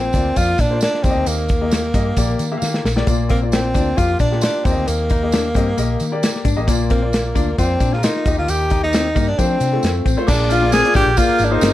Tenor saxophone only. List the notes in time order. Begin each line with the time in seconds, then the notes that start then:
Already playing: C4
0.37 F4
0.60 D4
0.83 D4
1.04 C4
1.28 A#3
3.31 A#3
3.53 C4
3.98 F4
4.20 D4
4.44 D4
4.65 C4
4.88 A#3
6.91 A#3
7.59 C4
7.93 F4
8.04 D#4
8.39 F4
8.50 G4
8.83 D#4
9.28 D4
9.39 C4
10.28 D4
10.52 F4
10.73 G#4
10.96 G4
11.18 F4
11.45 D4
11.52 D#4